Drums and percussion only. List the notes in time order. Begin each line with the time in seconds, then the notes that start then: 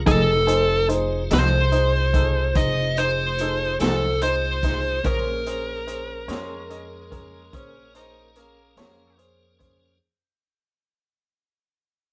0.07 kick, closed hi-hat
0.48 closed hi-hat
0.90 closed hi-hat
1.31 snare, closed hi-hat
1.72 closed hi-hat
2.14 kick, closed hi-hat
2.55 kick, closed hi-hat
2.97 closed hi-hat
3.38 closed hi-hat
3.80 snare, closed hi-hat
4.22 closed hi-hat
4.63 kick, snare, closed hi-hat
5.04 kick, closed hi-hat
5.47 closed hi-hat
5.88 closed hi-hat
6.29 snare, closed hi-hat
6.71 closed hi-hat
7.12 kick, closed hi-hat
7.53 kick, closed hi-hat
7.95 closed hi-hat
8.36 closed hi-hat
8.77 snare, closed hi-hat
9.19 closed hi-hat
9.60 kick, closed hi-hat